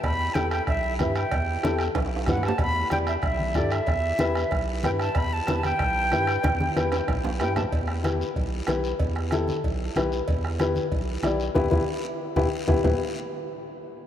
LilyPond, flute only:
\new Staff \with { instrumentName = "Flute" } { \time 4/4 \key e \minor \tempo 4 = 187 b''4 g''8 g''8 e''4 e''8 g''8~ | g''4. r4. fis''8 a''8 | b''4 g''8 e''8 e''4 d''8 e''8~ | e''2~ e''8 r8 g''8 a''8 |
b''8 a''4 g''2~ g''8~ | g''2 r4 g''8 a''8 | r1 | r1 |
r1 | r1 | r1 | }